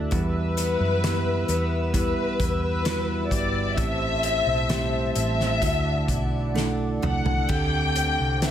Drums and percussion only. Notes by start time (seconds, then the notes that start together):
0.12 kick, closed hi-hat
0.58 closed hi-hat
1.04 snare, closed hi-hat
1.49 closed hi-hat
1.94 kick, closed hi-hat
2.40 kick, closed hi-hat
2.85 snare, closed hi-hat
3.31 kick, closed hi-hat
3.78 kick, closed hi-hat
4.23 closed hi-hat
4.70 snare, closed hi-hat
5.16 closed hi-hat
5.40 snare
5.62 kick, closed hi-hat
6.08 kick, closed hi-hat
6.56 snare
7.03 mid tom
7.26 floor tom
7.49 kick, crash
7.96 closed hi-hat
8.42 snare, closed hi-hat